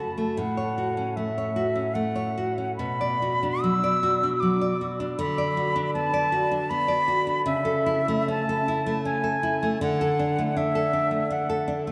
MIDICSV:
0, 0, Header, 1, 3, 480
1, 0, Start_track
1, 0, Tempo, 788436
1, 234, Time_signature, 3, 2, 24, 8
1, 1194, Tempo, 839161
1, 2154, Tempo, 780234
1, 2634, Tempo, 761421
1, 4554, Tempo, 832178
1, 5034, Tempo, 754717
1, 7337, End_track
2, 0, Start_track
2, 0, Title_t, "Flute"
2, 0, Program_c, 0, 73
2, 0, Note_on_c, 0, 81, 70
2, 232, Note_on_c, 0, 78, 79
2, 242, Note_off_c, 0, 81, 0
2, 708, Note_on_c, 0, 76, 82
2, 717, Note_off_c, 0, 78, 0
2, 1182, Note_on_c, 0, 78, 76
2, 1191, Note_off_c, 0, 76, 0
2, 1650, Note_off_c, 0, 78, 0
2, 1653, Note_on_c, 0, 83, 89
2, 2144, Note_on_c, 0, 88, 99
2, 2152, Note_off_c, 0, 83, 0
2, 2623, Note_on_c, 0, 86, 80
2, 2632, Note_off_c, 0, 88, 0
2, 2946, Note_off_c, 0, 86, 0
2, 3117, Note_on_c, 0, 83, 93
2, 3572, Note_off_c, 0, 83, 0
2, 3591, Note_on_c, 0, 81, 109
2, 4070, Note_on_c, 0, 83, 109
2, 4079, Note_off_c, 0, 81, 0
2, 4546, Note_off_c, 0, 83, 0
2, 4550, Note_on_c, 0, 76, 101
2, 5023, Note_off_c, 0, 76, 0
2, 5034, Note_on_c, 0, 81, 106
2, 5520, Note_on_c, 0, 80, 93
2, 5530, Note_off_c, 0, 81, 0
2, 6002, Note_off_c, 0, 80, 0
2, 6006, Note_on_c, 0, 78, 97
2, 6481, Note_on_c, 0, 76, 106
2, 6490, Note_off_c, 0, 78, 0
2, 6956, Note_on_c, 0, 78, 86
2, 6966, Note_off_c, 0, 76, 0
2, 7268, Note_off_c, 0, 78, 0
2, 7337, End_track
3, 0, Start_track
3, 0, Title_t, "Nylon-string guitar"
3, 0, Program_c, 1, 24
3, 0, Note_on_c, 1, 42, 62
3, 0, Note_on_c, 1, 66, 48
3, 0, Note_on_c, 1, 69, 46
3, 64, Note_off_c, 1, 69, 0
3, 107, Note_on_c, 1, 57, 52
3, 183, Note_off_c, 1, 66, 0
3, 208, Note_off_c, 1, 42, 0
3, 227, Note_on_c, 1, 45, 67
3, 231, Note_off_c, 1, 57, 0
3, 349, Note_on_c, 1, 73, 49
3, 473, Note_on_c, 1, 66, 52
3, 546, Note_off_c, 1, 73, 0
3, 591, Note_on_c, 1, 61, 56
3, 668, Note_off_c, 1, 66, 0
3, 712, Note_on_c, 1, 57, 47
3, 786, Note_off_c, 1, 61, 0
3, 839, Note_on_c, 1, 73, 44
3, 905, Note_off_c, 1, 57, 0
3, 950, Note_on_c, 1, 66, 56
3, 1027, Note_off_c, 1, 73, 0
3, 1068, Note_on_c, 1, 61, 50
3, 1143, Note_off_c, 1, 66, 0
3, 1187, Note_on_c, 1, 57, 56
3, 1260, Note_off_c, 1, 61, 0
3, 1305, Note_on_c, 1, 73, 59
3, 1378, Note_off_c, 1, 57, 0
3, 1431, Note_on_c, 1, 66, 51
3, 1502, Note_off_c, 1, 73, 0
3, 1547, Note_on_c, 1, 61, 48
3, 1626, Note_off_c, 1, 66, 0
3, 1648, Note_off_c, 1, 45, 0
3, 1669, Note_on_c, 1, 47, 65
3, 1671, Note_off_c, 1, 61, 0
3, 1793, Note_on_c, 1, 74, 57
3, 1915, Note_on_c, 1, 66, 55
3, 1988, Note_off_c, 1, 74, 0
3, 2033, Note_on_c, 1, 62, 62
3, 2107, Note_off_c, 1, 66, 0
3, 2152, Note_on_c, 1, 54, 56
3, 2226, Note_off_c, 1, 62, 0
3, 2275, Note_on_c, 1, 74, 63
3, 2348, Note_off_c, 1, 54, 0
3, 2394, Note_on_c, 1, 66, 59
3, 2467, Note_off_c, 1, 74, 0
3, 2519, Note_on_c, 1, 62, 57
3, 2585, Note_off_c, 1, 66, 0
3, 2637, Note_on_c, 1, 54, 55
3, 2708, Note_off_c, 1, 62, 0
3, 2756, Note_on_c, 1, 74, 57
3, 2829, Note_off_c, 1, 54, 0
3, 2880, Note_on_c, 1, 66, 57
3, 2950, Note_off_c, 1, 74, 0
3, 2999, Note_on_c, 1, 62, 63
3, 3072, Note_off_c, 1, 66, 0
3, 3091, Note_off_c, 1, 47, 0
3, 3117, Note_on_c, 1, 50, 88
3, 3119, Note_off_c, 1, 62, 0
3, 3240, Note_on_c, 1, 74, 60
3, 3359, Note_on_c, 1, 66, 60
3, 3431, Note_off_c, 1, 74, 0
3, 3476, Note_on_c, 1, 62, 71
3, 3550, Note_off_c, 1, 66, 0
3, 3599, Note_on_c, 1, 59, 60
3, 3669, Note_off_c, 1, 62, 0
3, 3715, Note_on_c, 1, 74, 64
3, 3790, Note_off_c, 1, 59, 0
3, 3833, Note_on_c, 1, 66, 66
3, 3907, Note_off_c, 1, 74, 0
3, 3954, Note_on_c, 1, 62, 66
3, 4025, Note_off_c, 1, 66, 0
3, 4075, Note_on_c, 1, 59, 72
3, 4145, Note_off_c, 1, 62, 0
3, 4186, Note_on_c, 1, 74, 65
3, 4264, Note_off_c, 1, 59, 0
3, 4309, Note_on_c, 1, 66, 69
3, 4380, Note_off_c, 1, 74, 0
3, 4430, Note_on_c, 1, 62, 62
3, 4503, Note_off_c, 1, 66, 0
3, 4527, Note_off_c, 1, 50, 0
3, 4548, Note_on_c, 1, 49, 87
3, 4552, Note_off_c, 1, 62, 0
3, 4660, Note_on_c, 1, 69, 70
3, 4783, Note_on_c, 1, 64, 71
3, 4861, Note_off_c, 1, 69, 0
3, 4910, Note_on_c, 1, 57, 73
3, 4983, Note_off_c, 1, 64, 0
3, 5025, Note_on_c, 1, 61, 65
3, 5108, Note_off_c, 1, 57, 0
3, 5157, Note_on_c, 1, 69, 67
3, 5229, Note_off_c, 1, 61, 0
3, 5278, Note_on_c, 1, 64, 66
3, 5351, Note_off_c, 1, 69, 0
3, 5394, Note_on_c, 1, 57, 65
3, 5470, Note_off_c, 1, 64, 0
3, 5515, Note_on_c, 1, 61, 64
3, 5588, Note_off_c, 1, 57, 0
3, 5631, Note_on_c, 1, 69, 61
3, 5709, Note_off_c, 1, 61, 0
3, 5755, Note_on_c, 1, 64, 72
3, 5829, Note_off_c, 1, 69, 0
3, 5879, Note_on_c, 1, 57, 67
3, 5951, Note_off_c, 1, 64, 0
3, 5974, Note_off_c, 1, 49, 0
3, 5995, Note_off_c, 1, 57, 0
3, 5997, Note_on_c, 1, 50, 89
3, 6123, Note_on_c, 1, 69, 73
3, 6240, Note_on_c, 1, 62, 67
3, 6312, Note_off_c, 1, 69, 0
3, 6362, Note_on_c, 1, 57, 66
3, 6429, Note_off_c, 1, 62, 0
3, 6476, Note_on_c, 1, 62, 66
3, 6550, Note_off_c, 1, 57, 0
3, 6595, Note_on_c, 1, 69, 60
3, 6667, Note_off_c, 1, 62, 0
3, 6710, Note_on_c, 1, 62, 57
3, 6786, Note_off_c, 1, 69, 0
3, 6822, Note_on_c, 1, 57, 51
3, 6902, Note_off_c, 1, 62, 0
3, 6947, Note_on_c, 1, 62, 66
3, 7018, Note_off_c, 1, 57, 0
3, 7068, Note_on_c, 1, 69, 66
3, 7140, Note_off_c, 1, 62, 0
3, 7183, Note_on_c, 1, 62, 66
3, 7262, Note_off_c, 1, 69, 0
3, 7307, Note_on_c, 1, 57, 55
3, 7337, Note_off_c, 1, 50, 0
3, 7337, Note_off_c, 1, 57, 0
3, 7337, Note_off_c, 1, 62, 0
3, 7337, End_track
0, 0, End_of_file